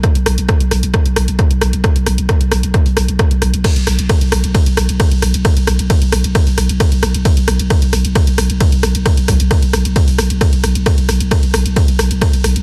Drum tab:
CC |----------------|----------------|x---------------|----------------|
RD |----------------|----------------|x---x---x---x---|x---x---x---x---|
HH |xxoxxxoxxxoxxxox|xxoxxxoxxooxxxox|xxoxxxoxxxoxxxox|xxoxxxoxxooxxxox|
SD |r-r-r-r-r-r-r-r-|r-r-r-r-r-r-r-r-|r-r-r-r-r-r-r-r-|r-r-r-r-r-r-r-r-|
BD |o---o---o---o---|o---o---o---o---|o---o---o---o---|o---o---o---o---|

CC |----------------|----------------|----------------|
RD |x---x---x---x---|x---x---x---x---|x---x---x---x---|
HH |xxoxxxoxxxoxxxox|xxoxxxoxxooxxxox|xxoxxxoxxxoxxxox|
SD |r-r-r-r-r-r-r-r-|r-r-r-r-r-r-r-r-|r-r-r-r-r-r-r-r-|
BD |o---o---o---o---|o-o-o---o---o---|o---o---o---o---|